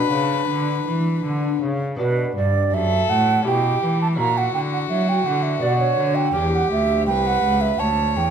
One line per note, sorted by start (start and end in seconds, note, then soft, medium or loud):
0.00 1.93 B3 soft
0.00 1.57 D4 medium
0.00 1.93 D4 soft
0.00 1.94 F#4 soft
0.00 1.59 B4 medium
0.10 0.47 C#3 soft
0.10 0.45 C#3 soft
0.48 0.85 D3 soft
0.48 0.83 D3 soft
0.87 1.24 E3 soft
0.87 1.21 E3 soft
1.25 1.61 D3 soft
1.25 1.59 D3 soft
1.62 1.99 C#3 soft
1.62 1.96 C#3 soft
1.97 2.33 B2 medium
1.97 3.40 B3 soft
1.97 3.41 D4 soft
1.97 3.41 F#4 soft
1.97 2.33 B4 medium
2.01 2.33 B2 soft
2.36 2.72 G2 soft
2.36 2.70 G2 soft
2.36 2.76 D5 medium
2.73 3.09 F#2 medium
2.73 3.06 F#2 soft
2.73 3.49 A4 medium
2.73 3.11 E5 medium
3.09 3.46 A2 medium
3.09 3.43 A2 soft
3.09 3.45 F#5 medium
3.42 4.14 C#4 soft
3.42 4.15 E4 soft
3.42 4.15 G4 soft
3.46 3.79 B2 soft
3.46 3.82 B2 soft
3.46 4.17 G4 soft
3.46 3.99 G5 medium
3.83 4.15 E3 soft
3.83 4.20 E3 soft
4.02 4.08 A5 medium
4.15 4.55 A#2 medium
4.15 5.57 C#4 soft
4.15 5.58 E4 soft
4.15 6.31 F#4 medium
4.15 5.59 F#4 soft
4.15 4.39 A#5 medium
4.20 4.51 A#2 soft
4.38 4.53 F#5 medium
4.54 4.90 D3 soft
4.54 4.87 D3 soft
4.54 4.60 G5 medium
4.73 4.79 F#5 medium
4.90 5.26 F#3 medium
4.90 5.24 F#3 soft
4.90 5.10 E5 medium
5.09 5.28 G5 medium
5.26 5.62 D3 medium
5.26 5.60 D3 soft
5.26 5.44 F#5 medium
5.43 5.63 E5 medium
5.60 5.98 B2 medium
5.60 6.31 B3 soft
5.60 6.31 D4 soft
5.60 6.33 F#4 soft
5.60 5.79 D5 medium
5.64 5.96 B2 soft
5.79 6.17 C#5 medium
5.99 6.34 D3 medium
5.99 6.32 D3 soft
6.15 6.57 G5 medium
6.33 6.70 E2 medium
6.33 6.68 E2 soft
6.33 8.30 C#4 soft
6.33 8.30 G4 soft
6.33 7.06 G4 medium
6.55 6.71 F#5 medium
6.71 7.04 D2 soft
6.71 7.09 D2 soft
6.71 7.06 E5 medium
7.07 7.43 C2 medium
7.07 7.81 B4 medium
7.07 7.28 G5 medium
7.27 7.63 F#5 medium
7.44 7.79 C#2 medium
7.61 7.80 E5 medium
7.79 8.18 D2 medium
7.79 8.12 D2 soft
7.79 8.30 C#5 medium
7.79 8.18 A5 medium
8.16 8.30 E2 medium
8.16 8.30 E2 soft
8.16 8.30 G5 medium